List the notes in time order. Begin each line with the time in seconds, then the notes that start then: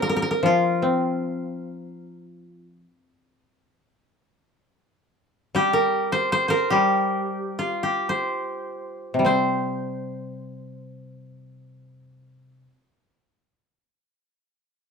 Already playing: A#3 C4 D4 F4 G4 C5 D5
0.02 A#4
0.09 A#4
0.16 A#4
0.22 A#4
0.31 A#4
0.43 F3 F4
0.82 C4
5.55 G3 G4
5.73 A#4
6.12 C5
6.32 C5
6.48 A#4 C5
6.70 G3 G4
7.59 F4
7.83 G4
8.09 C5
9.14 C3
9.19 G3
9.25 C4 C5